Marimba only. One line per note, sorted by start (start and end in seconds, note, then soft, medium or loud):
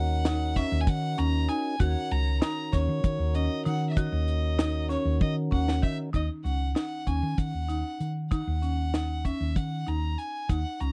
0.00 0.16 F#4 medium
0.26 0.52 D#4 medium
0.57 1.09 C#4 medium
1.18 1.44 C#4 medium
1.49 1.75 D#4 medium
1.80 2.32 F#4 medium
2.42 2.68 D#4 medium
2.73 3.25 C#4 medium
3.35 3.61 C#4 medium
3.65 3.92 D#4 medium
3.97 4.49 F#4 medium
4.59 4.85 D#4 medium
4.89 5.42 C#4 medium
5.51 5.78 C#4 medium
5.82 6.09 D#3 medium
6.13 6.40 D#4 medium
6.44 6.71 C#4 medium
6.75 7.02 D#4 medium
7.07 7.59 C#4 medium
7.69 8.21 D#4 medium
8.31 8.57 D#4 medium
8.62 8.88 C#4 medium
8.94 9.20 D#4 medium
9.25 9.77 C#4 medium
9.87 10.39 D#4 medium
10.49 10.75 D#4 medium
10.80 10.92 C#4 medium